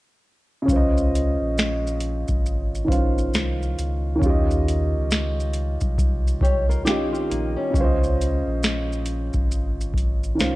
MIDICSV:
0, 0, Header, 1, 5, 480
1, 0, Start_track
1, 0, Tempo, 882353
1, 372, Time_signature, 4, 2, 24, 8
1, 5742, End_track
2, 0, Start_track
2, 0, Title_t, "Upright piano"
2, 0, Program_c, 0, 0
2, 339, Note_on_c, 0, 49, 70
2, 358, Note_on_c, 0, 61, 65
2, 377, Note_on_c, 0, 65, 61
2, 395, Note_on_c, 0, 72, 63
2, 414, Note_on_c, 0, 75, 86
2, 469, Control_c, 0, 64, 127
2, 1534, Note_off_c, 0, 49, 0
2, 1543, Note_off_c, 0, 61, 0
2, 1548, Note_on_c, 0, 51, 56
2, 1553, Note_off_c, 0, 65, 0
2, 1558, Note_on_c, 0, 61, 51
2, 1562, Note_off_c, 0, 72, 0
2, 1567, Note_on_c, 0, 65, 55
2, 1571, Note_off_c, 0, 75, 0
2, 1577, Note_on_c, 0, 72, 50
2, 1587, Note_on_c, 0, 77, 60
2, 2251, Note_off_c, 0, 51, 0
2, 2260, Note_on_c, 0, 51, 69
2, 2270, Note_off_c, 0, 61, 0
2, 2278, Note_on_c, 0, 61, 71
2, 2289, Note_off_c, 0, 65, 0
2, 2295, Note_off_c, 0, 72, 0
2, 2298, Note_on_c, 0, 65, 68
2, 2299, Note_off_c, 0, 77, 0
2, 2299, Control_c, 0, 64, 0
2, 2316, Note_on_c, 0, 67, 65
2, 2335, Note_on_c, 0, 75, 80
2, 2398, Control_c, 0, 64, 127
2, 3694, Note_off_c, 0, 51, 0
2, 3703, Note_off_c, 0, 61, 0
2, 3713, Note_off_c, 0, 65, 0
2, 3722, Note_off_c, 0, 67, 0
2, 3725, Note_on_c, 0, 51, 54
2, 3732, Note_off_c, 0, 75, 0
2, 3733, Note_on_c, 0, 61, 48
2, 3743, Note_on_c, 0, 65, 57
2, 3753, Note_on_c, 0, 67, 50
2, 3761, Note_on_c, 0, 75, 64
2, 4192, Note_on_c, 0, 49, 75
2, 4201, Note_off_c, 0, 61, 0
2, 4208, Note_off_c, 0, 51, 0
2, 4210, Note_on_c, 0, 61, 65
2, 4218, Note_off_c, 0, 65, 0
2, 4219, Control_c, 0, 64, 0
2, 4223, Note_off_c, 0, 67, 0
2, 4227, Note_off_c, 0, 75, 0
2, 4230, Note_on_c, 0, 65, 61
2, 4247, Note_on_c, 0, 72, 74
2, 4265, Note_on_c, 0, 75, 77
2, 4309, Control_c, 0, 64, 127
2, 5620, Note_off_c, 0, 49, 0
2, 5629, Note_off_c, 0, 61, 0
2, 5631, Note_on_c, 0, 51, 50
2, 5639, Note_off_c, 0, 65, 0
2, 5641, Note_on_c, 0, 61, 53
2, 5647, Note_off_c, 0, 72, 0
2, 5652, Note_on_c, 0, 65, 47
2, 5657, Note_off_c, 0, 75, 0
2, 5661, Note_on_c, 0, 72, 48
2, 5668, Note_on_c, 0, 77, 53
2, 5742, Note_off_c, 0, 51, 0
2, 5742, Note_off_c, 0, 61, 0
2, 5742, Note_off_c, 0, 65, 0
2, 5742, Note_off_c, 0, 72, 0
2, 5742, Note_off_c, 0, 77, 0
2, 5742, End_track
3, 0, Start_track
3, 0, Title_t, "Nylon-string guitar"
3, 0, Program_c, 1, 24
3, 3495, Note_on_c, 1, 67, 59
3, 3495, Note_on_c, 1, 73, 74
3, 3633, Note_off_c, 1, 73, 0
3, 3634, Note_off_c, 1, 67, 0
3, 3640, Note_on_c, 1, 65, 69
3, 3640, Note_on_c, 1, 70, 71
3, 3726, Note_off_c, 1, 70, 0
3, 3728, Note_off_c, 1, 65, 0
3, 3728, Note_on_c, 1, 67, 80
3, 3731, Note_on_c, 1, 61, 67
3, 3870, Note_off_c, 1, 67, 0
3, 3872, Note_off_c, 1, 61, 0
3, 3876, Note_on_c, 1, 65, 77
3, 3880, Note_on_c, 1, 60, 65
3, 3965, Note_off_c, 1, 65, 0
3, 3968, Note_off_c, 1, 60, 0
3, 3970, Note_on_c, 1, 63, 71
3, 3971, Note_on_c, 1, 58, 59
3, 4110, Note_off_c, 1, 63, 0
3, 4111, Note_off_c, 1, 58, 0
3, 4115, Note_on_c, 1, 61, 72
3, 4121, Note_on_c, 1, 55, 57
3, 4345, Note_off_c, 1, 61, 0
3, 4348, Note_off_c, 1, 55, 0
3, 5742, End_track
4, 0, Start_track
4, 0, Title_t, "Sub bass"
4, 0, Program_c, 2, 38
4, 375, Note_on_c, 2, 37, 120
4, 740, Note_off_c, 2, 37, 0
4, 767, Note_on_c, 2, 34, 99
4, 1221, Note_off_c, 2, 34, 0
4, 1246, Note_on_c, 2, 32, 96
4, 1794, Note_off_c, 2, 32, 0
4, 1820, Note_on_c, 2, 36, 90
4, 2043, Note_off_c, 2, 36, 0
4, 2060, Note_on_c, 2, 37, 88
4, 2283, Note_off_c, 2, 37, 0
4, 2298, Note_on_c, 2, 39, 105
4, 2686, Note_on_c, 2, 37, 93
4, 2694, Note_off_c, 2, 39, 0
4, 3141, Note_off_c, 2, 37, 0
4, 3167, Note_on_c, 2, 36, 93
4, 3714, Note_off_c, 2, 36, 0
4, 3979, Note_on_c, 2, 34, 96
4, 4115, Note_off_c, 2, 34, 0
4, 4216, Note_on_c, 2, 37, 112
4, 4581, Note_off_c, 2, 37, 0
4, 4609, Note_on_c, 2, 34, 91
4, 5062, Note_off_c, 2, 34, 0
4, 5085, Note_on_c, 2, 32, 92
4, 5633, Note_off_c, 2, 32, 0
4, 5658, Note_on_c, 2, 36, 87
4, 5742, Note_off_c, 2, 36, 0
4, 5742, End_track
5, 0, Start_track
5, 0, Title_t, "Drums"
5, 372, Note_on_c, 9, 36, 106
5, 377, Note_on_c, 9, 82, 76
5, 427, Note_off_c, 9, 36, 0
5, 432, Note_off_c, 9, 82, 0
5, 531, Note_on_c, 9, 82, 45
5, 585, Note_off_c, 9, 82, 0
5, 627, Note_on_c, 9, 42, 78
5, 627, Note_on_c, 9, 82, 59
5, 682, Note_off_c, 9, 42, 0
5, 682, Note_off_c, 9, 82, 0
5, 858, Note_on_c, 9, 82, 60
5, 864, Note_on_c, 9, 38, 109
5, 912, Note_off_c, 9, 82, 0
5, 919, Note_off_c, 9, 38, 0
5, 1017, Note_on_c, 9, 82, 41
5, 1071, Note_off_c, 9, 82, 0
5, 1090, Note_on_c, 9, 42, 68
5, 1090, Note_on_c, 9, 82, 47
5, 1144, Note_off_c, 9, 42, 0
5, 1144, Note_off_c, 9, 82, 0
5, 1239, Note_on_c, 9, 82, 46
5, 1244, Note_on_c, 9, 36, 79
5, 1294, Note_off_c, 9, 82, 0
5, 1299, Note_off_c, 9, 36, 0
5, 1338, Note_on_c, 9, 82, 72
5, 1392, Note_off_c, 9, 82, 0
5, 1495, Note_on_c, 9, 82, 48
5, 1550, Note_off_c, 9, 82, 0
5, 1569, Note_on_c, 9, 36, 88
5, 1588, Note_on_c, 9, 42, 64
5, 1588, Note_on_c, 9, 82, 45
5, 1623, Note_off_c, 9, 36, 0
5, 1642, Note_off_c, 9, 42, 0
5, 1642, Note_off_c, 9, 82, 0
5, 1731, Note_on_c, 9, 82, 52
5, 1785, Note_off_c, 9, 82, 0
5, 1815, Note_on_c, 9, 82, 57
5, 1822, Note_on_c, 9, 38, 95
5, 1870, Note_off_c, 9, 82, 0
5, 1876, Note_off_c, 9, 38, 0
5, 1971, Note_on_c, 9, 82, 36
5, 2026, Note_off_c, 9, 82, 0
5, 2059, Note_on_c, 9, 42, 65
5, 2059, Note_on_c, 9, 82, 48
5, 2113, Note_off_c, 9, 42, 0
5, 2113, Note_off_c, 9, 82, 0
5, 2293, Note_on_c, 9, 36, 102
5, 2299, Note_on_c, 9, 82, 62
5, 2348, Note_off_c, 9, 36, 0
5, 2354, Note_off_c, 9, 82, 0
5, 2451, Note_on_c, 9, 82, 47
5, 2506, Note_off_c, 9, 82, 0
5, 2548, Note_on_c, 9, 42, 73
5, 2548, Note_on_c, 9, 82, 53
5, 2602, Note_off_c, 9, 42, 0
5, 2602, Note_off_c, 9, 82, 0
5, 2778, Note_on_c, 9, 82, 59
5, 2785, Note_on_c, 9, 38, 110
5, 2833, Note_off_c, 9, 82, 0
5, 2839, Note_off_c, 9, 38, 0
5, 2937, Note_on_c, 9, 82, 37
5, 2991, Note_off_c, 9, 82, 0
5, 3010, Note_on_c, 9, 42, 66
5, 3010, Note_on_c, 9, 82, 49
5, 3065, Note_off_c, 9, 42, 0
5, 3065, Note_off_c, 9, 82, 0
5, 3158, Note_on_c, 9, 82, 44
5, 3164, Note_on_c, 9, 36, 81
5, 3213, Note_off_c, 9, 82, 0
5, 3218, Note_off_c, 9, 36, 0
5, 3254, Note_on_c, 9, 36, 93
5, 3257, Note_on_c, 9, 82, 75
5, 3309, Note_off_c, 9, 36, 0
5, 3312, Note_off_c, 9, 82, 0
5, 3414, Note_on_c, 9, 82, 52
5, 3468, Note_off_c, 9, 82, 0
5, 3488, Note_on_c, 9, 36, 92
5, 3508, Note_on_c, 9, 42, 58
5, 3508, Note_on_c, 9, 82, 42
5, 3542, Note_off_c, 9, 36, 0
5, 3562, Note_off_c, 9, 42, 0
5, 3562, Note_off_c, 9, 82, 0
5, 3650, Note_on_c, 9, 82, 47
5, 3704, Note_off_c, 9, 82, 0
5, 3733, Note_on_c, 9, 82, 54
5, 3739, Note_on_c, 9, 38, 102
5, 3788, Note_off_c, 9, 82, 0
5, 3794, Note_off_c, 9, 38, 0
5, 3889, Note_on_c, 9, 82, 39
5, 3944, Note_off_c, 9, 82, 0
5, 3980, Note_on_c, 9, 42, 69
5, 3980, Note_on_c, 9, 82, 52
5, 4034, Note_off_c, 9, 42, 0
5, 4034, Note_off_c, 9, 82, 0
5, 4212, Note_on_c, 9, 36, 102
5, 4218, Note_on_c, 9, 82, 69
5, 4266, Note_off_c, 9, 36, 0
5, 4273, Note_off_c, 9, 82, 0
5, 4371, Note_on_c, 9, 82, 46
5, 4426, Note_off_c, 9, 82, 0
5, 4469, Note_on_c, 9, 42, 76
5, 4469, Note_on_c, 9, 82, 55
5, 4523, Note_off_c, 9, 42, 0
5, 4523, Note_off_c, 9, 82, 0
5, 4695, Note_on_c, 9, 82, 64
5, 4701, Note_on_c, 9, 38, 108
5, 4749, Note_off_c, 9, 82, 0
5, 4756, Note_off_c, 9, 38, 0
5, 4856, Note_on_c, 9, 82, 42
5, 4910, Note_off_c, 9, 82, 0
5, 4928, Note_on_c, 9, 42, 68
5, 4928, Note_on_c, 9, 82, 47
5, 4982, Note_off_c, 9, 42, 0
5, 4982, Note_off_c, 9, 82, 0
5, 5077, Note_on_c, 9, 82, 43
5, 5082, Note_on_c, 9, 36, 83
5, 5132, Note_off_c, 9, 82, 0
5, 5136, Note_off_c, 9, 36, 0
5, 5176, Note_on_c, 9, 82, 75
5, 5231, Note_off_c, 9, 82, 0
5, 5336, Note_on_c, 9, 82, 51
5, 5390, Note_off_c, 9, 82, 0
5, 5407, Note_on_c, 9, 36, 76
5, 5427, Note_on_c, 9, 42, 66
5, 5427, Note_on_c, 9, 82, 46
5, 5461, Note_off_c, 9, 36, 0
5, 5482, Note_off_c, 9, 42, 0
5, 5482, Note_off_c, 9, 82, 0
5, 5568, Note_on_c, 9, 82, 46
5, 5622, Note_off_c, 9, 82, 0
5, 5654, Note_on_c, 9, 82, 59
5, 5661, Note_on_c, 9, 38, 99
5, 5709, Note_off_c, 9, 82, 0
5, 5715, Note_off_c, 9, 38, 0
5, 5742, End_track
0, 0, End_of_file